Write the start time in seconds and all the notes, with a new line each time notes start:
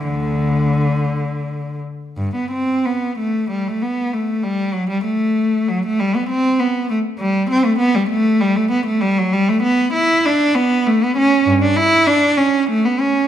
0.03 D2 D3
2.17 G2
2.35 B3
2.51 C4
2.85 B3
3.18 A3
3.50 G3
3.67 A3
3.82 B3
4.13 A3
4.43 G3
4.73 F#3
4.90 G3
5.04 A3
5.68 F#3
5.85 A3
5.99 G3
6.15 B3
6.30 C4
6.60 B3
6.90 A3
7.19 G3
7.49 C4
7.65 A3
7.78 B3
7.95 G3
8.09 A3
8.40 G3
8.56 A3
8.71 B3
8.86 A3
9.00 G3
9.18 F#3
9.32 G3
9.49 A3
9.63 B3
9.93 E4
10.25 D4
10.55 B3
10.86 A3
11.03 B3
11.17 C#4
11.46 G2
11.62 D4
11.76 E4
12.07 D4
12.37 C#4
12.69 A3
12.85 B3
13.00 C#4